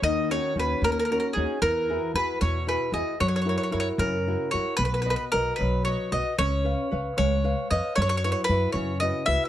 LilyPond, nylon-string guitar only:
\new Staff \with { instrumentName = "Nylon-string guitar" } { \time 6/8 \key fis \mixolydian \tempo 4. = 76 dis8 <cis' dis' fis'>8 <cis' dis' fis'>8 ais8 <cis' dis' fis'>8 <cis' dis' fis'>8 | e8 <e' fis' gis'>8 <e' fis' gis'>8 b,8 <e' fis' gis'>8 <e' fis' gis'>8 | fis8 <e' fis' ais'>8 <e' fis' ais'>8 cis8 <e' fis' ais'>8 <e' fis' ais'>8 | b8 <fis' b' dis''>8 <fis' b' dis''>8 fis8 <fis' b' dis''>8 <fis' b' dis''>8 |
cis'8 <b' cis'' eis''>8 <b' cis'' eis''>8 gis8 <b' cis'' eis''>8 <b' cis'' eis''>8 | fis8 <e' fis' b'>8 <e' fis' b'>8 cis8 <e' fis' b'>8 <e' fis' b'>8 | }